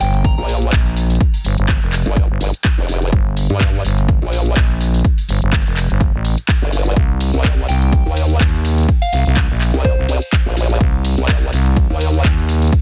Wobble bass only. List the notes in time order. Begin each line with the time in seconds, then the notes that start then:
0.38 A#1
2.06 G1
2.41 G1
2.78 F1
3.50 G2
4.22 A#1
6.62 G1
7.34 C2
8.06 D#2
9.74 C2
10.09 C2
10.46 A#1
11.18 C2
11.90 D#2